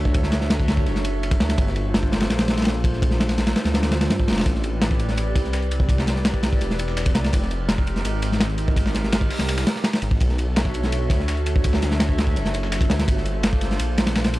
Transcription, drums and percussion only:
0.05 kick
0.14 kick, ride
0.23 snare
0.32 snare, ride
0.41 snare
0.50 snare, ride
0.60 kick
0.68 snare, ride
0.77 kick
0.86 snare, ride
0.95 snare
1.05 ride
1.23 ride
1.31 kick, ride
1.40 snare, ride
1.49 snare, ride
1.58 kick, ride
1.67 snare
1.76 ride
1.94 snare, ride
2.03 kick
2.12 snare, ride
2.20 snare, ride
2.30 snare, ride
2.39 snare, ride
2.48 snare, ride
2.57 snare, ride
2.62 snare, ride
2.65 snare, ride
2.84 kick, ride
2.93 snare
3.02 kick, ride
3.11 snare
3.20 snare, ride
3.29 snare, ride
3.38 snare, ride
3.47 snare, ride
3.56 snare, ride
3.65 snare, ride
3.74 snare, ride
3.83 snare, ride
3.91 snare, ride
4.01 snare, ride
4.10 snare, ride
4.20 kick
4.28 snare, ride
4.32 snare, ride
4.37 snare, ride
4.40 snare, ride
4.46 kick, closed hi-hat, ride
4.55 snare
4.64 closed hi-hat, ride
4.82 snare, closed hi-hat, ride
4.91 kick
4.99 closed hi-hat, ride
5.09 snare, closed hi-hat
5.17 closed hi-hat, ride
5.35 kick, open hi-hat, ride
5.44 snare
5.53 snare, closed hi-hat, ride
5.62 closed hi-hat
5.71 closed hi-hat, ride
5.80 kick
5.89 kick, closed hi-hat, ride
5.98 snare
6.07 snare, closed hi-hat, ride
6.16 snare
6.25 snare, closed hi-hat, ride
6.34 kick
6.43 snare, closed hi-hat, ride
6.53 kick
6.61 snare, closed hi-hat, ride
6.70 snare
6.79 closed hi-hat, ride
6.88 snare
6.97 snare, closed hi-hat, ride
7.06 kick, snare, ride
7.15 snare, closed hi-hat, ride
7.24 snare, ride
7.33 kick, closed hi-hat, ride
7.42 snare
7.51 closed hi-hat, ride
7.69 snare, closed hi-hat, ride
7.78 kick
7.87 closed hi-hat, ride
7.96 snare, closed hi-hat
8.05 closed hi-hat, ride
8.22 open hi-hat, ride
8.32 snare
8.40 snare, closed hi-hat, ride
8.50 closed hi-hat
8.58 closed hi-hat, ride
8.68 kick
8.76 kick, closed hi-hat, ride
8.86 snare
8.94 snare, closed hi-hat, ride
9.04 snare
9.13 snare, closed hi-hat, ride
9.21 kick
9.30 snare, closed hi-hat, open hi-hat
9.39 snare, closed hi-hat
9.49 snare, closed hi-hat, ride
9.58 snare, closed hi-hat
9.67 snare, closed hi-hat, ride
9.76 snare
9.84 snare, closed hi-hat, ride
9.93 snare, ride
10.02 closed hi-hat, ride
10.11 kick
10.20 kick, closed hi-hat, ride
10.29 snare
10.38 closed hi-hat, ride
10.56 snare, closed hi-hat, ride
10.65 kick
10.74 closed hi-hat, ride
10.83 snare, closed hi-hat
10.92 closed hi-hat, ride
11.10 kick, open hi-hat, ride
11.20 snare
11.28 snare, closed hi-hat, ride
11.37 closed hi-hat
11.46 closed hi-hat, ride
11.56 kick
11.64 kick, closed hi-hat, ride
11.73 snare
11.82 snare, closed hi-hat, ride
11.91 snare
12.00 snare, closed hi-hat, ride
12.09 kick
12.18 snare, closed hi-hat, ride
12.27 kick
12.36 snare, closed hi-hat, ride
12.45 snare
12.54 closed hi-hat, ride
12.63 snare
12.72 snare, closed hi-hat, ride
12.81 kick, snare, ride
12.90 snare, closed hi-hat, ride
12.99 snare, ride
13.08 kick, closed hi-hat, ride
13.17 snare
13.25 closed hi-hat, ride
13.43 snare, closed hi-hat, ride
13.53 kick
13.61 snare, closed hi-hat, ride
13.71 snare, closed hi-hat
13.79 closed hi-hat, ride
13.98 snare, open hi-hat, ride
14.07 snare, ride
14.15 snare, closed hi-hat, ride
14.24 snare, closed hi-hat, ride
14.34 closed hi-hat, ride

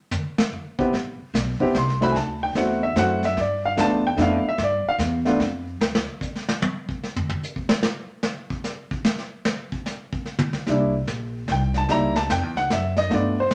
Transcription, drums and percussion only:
0.11 floor tom, hi-hat pedal
0.38 snare
0.53 floor tom
0.79 kick
0.93 brush sweep, kick, snare
1.34 kick, snare, hi-hat pedal
1.60 kick
1.74 kick, snare
1.88 snare
2.02 snare
2.15 brush sweep, kick, snare
2.55 kick, snare
2.96 kick, snare, hi-hat pedal
3.23 snare
3.37 brush sweep, kick, snare
3.77 kick, snare, hi-hat pedal
4.18 kick, snare
4.58 brush sweep, kick, snare
4.99 kick, snare, hi-hat pedal
5.25 snare
5.40 kick, snare
5.81 snare
5.95 snare
6.21 kick, hi-hat pedal
6.35 snare
6.49 snare
6.62 high tom
6.89 kick
7.03 snare
7.16 floor tom
7.29 floor tom
7.43 hi-hat pedal
7.56 kick
7.69 snare
7.83 snare
8.23 snare
8.50 kick
8.64 snare, hi-hat pedal
8.91 kick
9.05 snare
9.18 snare
9.45 snare
9.72 kick
9.86 snare, hi-hat pedal
10.13 kick
10.25 snare
10.39 mid tom
10.53 snare
10.67 brush sweep, kick, snare
11.07 kick, snare, hi-hat pedal
11.48 kick, snare
11.74 snare
11.89 brush sweep, kick, snare
12.16 snare
12.30 kick, snare, hi-hat pedal
12.57 snare
12.70 kick, snare, hi-hat pedal
12.97 snare
13.11 brush sweep, kick, snare
13.51 kick, snare, hi-hat pedal

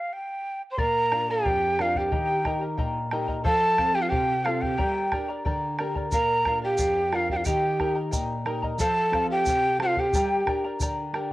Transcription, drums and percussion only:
0.78 bombo low
1.12 bombo rim
1.45 bombo low
1.79 bombo rim
1.95 bombo low
2.12 bombo low
2.45 bombo rim, bombo low
2.78 bombo low
3.11 bombo rim
3.28 bombo low
3.45 bombo low
3.78 bombo rim, bombo low
4.12 bombo low
4.46 bombo rim
4.62 bombo low
4.79 bombo low
5.12 bombo rim, bombo low
5.45 bombo low
5.79 bombo rim
5.96 bombo low
6.12 bombo low, shaker
6.45 bombo rim, bombo low
6.78 bombo low, shaker
7.13 bombo rim
7.29 bombo low
7.45 bombo low, shaker
7.80 bombo rim, bombo low
8.13 bombo low, shaker
8.46 bombo rim
8.63 bombo low
8.79 bombo low, shaker
9.13 bombo rim, bombo low
9.46 bombo low, shaker
9.80 bombo rim
9.96 bombo low
10.13 bombo low, shaker
10.47 bombo rim, bombo low
10.80 bombo low, shaker
11.14 bombo rim

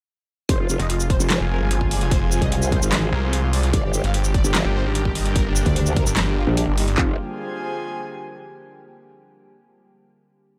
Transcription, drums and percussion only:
0.49 kick, closed hi-hat
0.69 shaker
0.80 closed hi-hat
0.90 closed hi-hat
1.00 shaker
1.10 kick, closed hi-hat
1.20 shaker
1.30 snare, clap, closed hi-hat
1.71 closed hi-hat
1.81 kick
1.91 open hi-hat
2.01 closed hi-hat
2.11 kick, closed hi-hat
2.32 shaker
2.42 kick, closed hi-hat
2.52 closed hi-hat
2.62 shaker
2.72 kick, closed hi-hat
2.82 shaker
2.92 snare, clap, closed hi-hat
3.33 closed hi-hat
3.53 open hi-hat
3.63 closed hi-hat
3.73 kick, closed hi-hat
3.94 shaker
4.04 closed hi-hat
4.14 closed hi-hat
4.24 shaker
4.34 kick, closed hi-hat
4.45 shaker
4.55 snare, clap, closed hi-hat
4.95 closed hi-hat
5.05 kick
5.15 open hi-hat
5.26 closed hi-hat
5.36 kick, closed hi-hat
5.56 shaker
5.66 kick, closed hi-hat
5.76 closed hi-hat
5.86 shaker
5.96 kick, closed hi-hat
6.07 shaker
6.17 snare, clap, closed hi-hat
6.57 closed hi-hat
6.78 open hi-hat
6.88 closed hi-hat
6.98 kick, clap

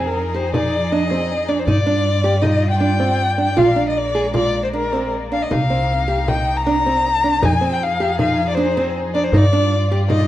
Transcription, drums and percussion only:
0.54 frame drum
1.10 frame drum
1.67 frame drum
2.43 frame drum
3.00 frame drum
3.58 frame drum
4.34 frame drum
4.92 frame drum
5.51 frame drum
6.28 frame drum
6.85 frame drum
7.42 frame drum
8.19 frame drum
8.77 frame drum
9.33 frame drum
10.10 frame drum

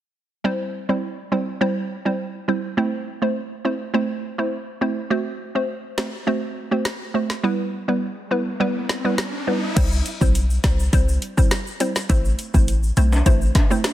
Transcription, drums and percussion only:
5.98 snare
6.85 cross-stick, snare
7.30 snare
8.89 snare
9.18 cross-stick, snare
9.77 kick, closed hi-hat, crash, shaker
9.92 shaker
10.06 closed hi-hat, shaker
10.21 kick, shaker
10.35 closed hi-hat, shaker
10.50 shaker
10.64 kick, snare, closed hi-hat, shaker
10.80 shaker
10.93 kick, closed hi-hat, shaker
11.09 shaker
11.22 closed hi-hat
11.38 kick, shaker
11.51 cross-stick, snare, closed hi-hat, shaker
11.67 shaker
11.80 closed hi-hat, shaker
11.96 snare, shaker
12.10 kick, closed hi-hat, shaker
12.25 shaker
12.39 closed hi-hat, shaker
12.54 kick, shaker
12.68 closed hi-hat, shaker
12.83 shaker
12.97 closed hi-hat, shaker
13.12 high timbale, shaker
13.26 kick, closed hi-hat, shaker
13.41 shaker
13.55 kick, snare, closed hi-hat, high timbale
13.71 shaker
13.84 cross-stick, snare, closed hi-hat, high timbale, shaker

